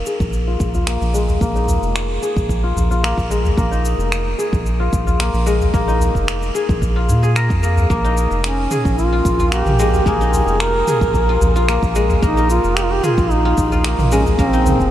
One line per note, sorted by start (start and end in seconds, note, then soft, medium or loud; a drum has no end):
0.00 0.87 A#3 loud
0.00 1.55 D#4 medium
0.06 2.22 G#4 medium
0.06 shaker medium
0.20 0.57 A#1 medium
0.20 kick loud
0.20 shaker soft
0.33 shaker soft
0.47 0.74 F4 medium
0.60 0.98 A#1 medium
0.60 kick medium
0.60 shaker medium
0.74 2.63 F4 medium
0.74 udu medium
0.74 shaker soft
0.87 1.41 A#3 medium
0.87 finger snap loud
0.87 shaker soft
1.02 1.38 A#1 medium
1.02 shaker soft
1.14 3.29 G#3 medium
1.14 shaker medium
1.28 udu medium
1.28 shaker soft
1.41 1.79 A#1 medium
1.41 3.03 A#3 medium
1.41 kick loud
1.41 shaker soft
1.55 3.71 D#4 medium
1.55 shaker soft
1.68 udu medium
1.68 shaker medium
1.83 2.19 F1 medium
1.83 shaker soft
1.96 finger snap loud
1.96 shaker soft
2.22 4.38 G#4 medium
2.22 shaker medium
2.36 2.73 A#1 medium
2.36 kick loud
2.36 shaker soft
2.49 kick medium
2.49 shaker soft
2.63 2.90 F4 medium
2.76 3.14 A#1 medium
2.76 udu loud
2.76 shaker medium
2.91 4.79 F4 medium
2.91 shaker soft
3.03 3.57 A#3 medium
3.03 finger snap loud
3.03 shaker soft
3.17 3.54 A#1 medium
3.17 kick loud
3.17 shaker soft
3.30 5.45 G#3 medium
3.30 shaker medium
3.45 udu medium
3.45 shaker soft
3.57 3.95 A#1 medium
3.57 5.20 A#3 loud
3.57 kick loud
3.57 shaker soft
3.71 5.87 D#4 medium
3.71 shaker soft
3.85 shaker medium
3.98 4.35 F1 loud
3.98 shaker soft
4.12 finger snap medium
4.12 shaker soft
4.38 6.54 G#4 medium
4.38 shaker medium
4.53 4.89 A#1 loud
4.53 kick loud
4.53 shaker soft
4.66 shaker soft
4.80 5.06 F4 medium
4.93 5.30 A#1 medium
4.93 kick loud
4.93 shaker medium
5.07 6.96 F4 medium
5.07 udu medium
5.07 shaker soft
5.20 5.73 A#3 medium
5.20 finger snap loud
5.20 shaker soft
5.34 5.70 A#1 medium
5.34 shaker soft
5.46 9.36 G#3 medium
5.46 shaker medium
5.61 udu medium
5.61 shaker soft
5.73 6.11 A#1 loud
5.73 7.63 A#3 loud
5.73 kick loud
5.73 shaker soft
5.88 8.04 D#4 medium
5.88 shaker soft
6.00 udu medium
6.00 shaker medium
6.15 6.51 F1 medium
6.15 kick medium
6.15 shaker soft
6.28 finger snap medium
6.28 shaker soft
6.42 shaker soft
6.54 7.22 G#4 medium
6.54 shaker medium
6.69 7.10 A#1 medium
6.69 kick loud
6.69 shaker soft
6.82 kick medium
6.82 shaker soft
6.96 9.12 F4 medium
7.09 7.52 A#2 medium
7.09 udu loud
7.09 shaker medium
7.23 8.71 G#4 medium
7.23 shaker soft
7.36 9.48 A#4 medium
7.36 finger snap loud
7.36 shaker soft
7.50 7.87 F2 medium
7.50 kick loud
7.50 shaker soft
7.63 7.90 A#3 medium
7.63 shaker medium
7.77 udu medium
7.77 shaker soft
7.90 8.27 A#1 loud
7.90 9.52 A#3 medium
7.90 kick loud
7.90 shaker soft
8.04 10.21 D#4 medium
8.04 shaker soft
8.17 shaker medium
8.31 8.68 F1 loud
8.31 shaker soft
8.44 8.94 C#4 medium
8.44 finger snap medium
8.44 shaker soft
8.71 10.87 G#4 medium
8.71 mid tom medium
8.71 shaker medium
8.85 9.22 A#1 medium
8.85 kick loud
8.85 shaker soft
8.98 9.48 F4 loud
8.98 shaker soft
9.12 9.39 F4 medium
9.25 9.63 A#1 loud
9.25 kick loud
9.25 shaker medium
9.39 11.29 F4 medium
9.39 udu medium
9.39 shaker soft
9.51 10.06 A#3 medium
9.51 10.08 G4 loud
9.51 finger snap medium
9.51 shaker soft
9.66 10.03 A#1 medium
9.66 mid tom medium
9.66 shaker soft
9.79 11.94 G#3 medium
9.79 shaker medium
9.94 udu medium
9.94 shaker soft
10.06 10.44 A#1 medium
10.06 11.68 A#3 loud
10.06 10.62 G#4 loud
10.06 kick loud
10.06 shaker soft
10.21 12.37 D#4 medium
10.21 shaker soft
10.34 udu medium
10.34 shaker medium
10.47 10.84 F1 loud
10.47 shaker soft
10.60 11.69 A#4 loud
10.60 finger snap medium
10.60 shaker soft
10.87 13.03 G#4 medium
10.87 mid tom medium
10.87 shaker medium
11.01 11.38 A#1 medium
11.01 kick loud
11.01 shaker soft
11.14 kick medium
11.14 shaker soft
11.29 11.55 F4 medium
11.41 11.79 A#1 medium
11.41 udu medium
11.41 shaker medium
11.56 13.45 F4 medium
11.56 shaker soft
11.69 12.22 A#3 medium
11.69 finger snap medium
11.69 shaker soft
11.82 12.19 A#1 medium
11.82 kick loud
11.82 shaker soft
11.95 14.11 G#3 medium
11.95 shaker medium
12.10 udu medium
12.10 shaker soft
12.22 12.60 A#1 loud
12.22 13.85 A#3 loud
12.22 12.48 D#4 loud
12.22 kick loud
12.22 shaker soft
12.37 14.53 D#4 medium
12.37 shaker soft
12.50 12.78 F4 loud
12.50 shaker medium
12.64 13.00 F1 medium
12.64 shaker soft
12.76 12.85 G4 loud
12.76 finger snap medium
12.76 shaker soft
12.84 12.93 F4 medium
12.91 13.06 G4 loud
13.04 13.33 F4 loud
13.04 14.91 G#4 medium
13.04 mid tom medium
13.04 shaker medium
13.18 13.54 A#1 loud
13.18 kick loud
13.18 shaker soft
13.31 13.85 D#4 medium
13.31 shaker soft
13.45 13.72 F4 medium
13.58 13.95 A#1 medium
13.58 kick medium
13.58 shaker medium
13.72 14.91 F4 medium
13.72 udu medium
13.72 shaker soft
13.84 14.38 A#3 medium
13.84 finger snap loud
13.84 shaker soft
13.99 14.35 A#1 medium
13.99 mid tom medium
13.99 shaker soft
14.12 14.91 G#3 medium
14.12 14.24 C#4 loud
14.12 shaker medium
14.26 udu medium
14.26 shaker soft
14.38 14.76 A#1 loud
14.38 14.91 A#3 loud
14.38 14.91 C4 loud
14.38 kick loud
14.38 shaker soft
14.53 14.91 D#4 medium
14.53 shaker soft
14.65 mid tom medium
14.65 udu medium
14.65 shaker medium
14.80 14.91 F1 loud
14.80 kick medium
14.80 shaker soft